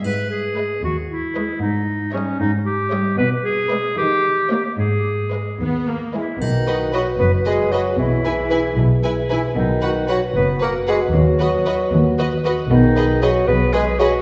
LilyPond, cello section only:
\new Staff \with { instrumentName = "Cello section" } { \clef bass \time 6/8 \key gis \minor \tempo 4. = 76 gis,4. dis,4. | gis,4. gis,4. | b,4. dis4. | gis,4. dis,4. |
\key b \major b,4. fis,4. | b,4. b,4. | b,4. fis,4. | dis,4. dis,4. |
\key gis \minor b,4. b,4. | }